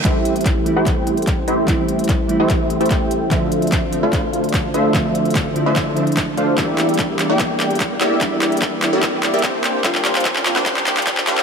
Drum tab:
HH |x---x-xxx---x---x---x-xxx---x---|x---x-xxx---x---x---x-xxx---x---|x---x-xxx---x---x---x-xxx---x---|x---x-xxx---x---x---x-xxx---x---|
CP |x-------x-------x-------x-------|x-------x-------x-------x-------|x-------x-------x-------x-------|x-------x-------x-------x-------|
BD |o-------o-------o-------o-------|o-------o-------o-------o-------|o-------o-------o-------o-------|o-------o-------o-------o-------|

HH |x---x-xxx---x---x---x-xxx---x---|x---x-xxx---x---x---x-xxx---x---|x---x-xxx---x---x---x-xxx---x---|
CP |x---x---x---x---x---x---x---x---|x---x---x---x---x---x---x---x---|x-x-x-x-x-x-x-x-x-x-x-x-x-x-x-x-|
BD |o-------o-------o-------o-------|o-------o-------o-------o-------|o-------o-------o-------o-------|